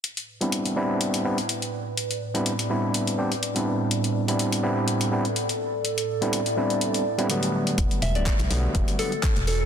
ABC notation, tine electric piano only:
X:1
M:4/4
L:1/16
Q:"Swing 16ths" 1/4=124
K:Am
V:1 name="Tine electric piano"
z3 [G,B,CDE]3 [G,B,CDE]4 [G,B,CDE] z4 z | z3 [G,B,CDE] z2 [G,B,CDE]4 [G,B,CDG] z2 [G,B,CDE]3- | [G,B,CDE]3 [G,B,CDE]3 [G,B,CDE]4 [G,B,CDE] z4 z | z3 [G,B,CDE] z2 [G,B,CDE]4 z [G,B,CDE] [D,^F,G,A,B,]4- |
[D,^F,G,A,B,]3 [D,F,G,A,B,]3 [D,F,G,A,B,]4 [D,F,G,A,B,] z4 z |]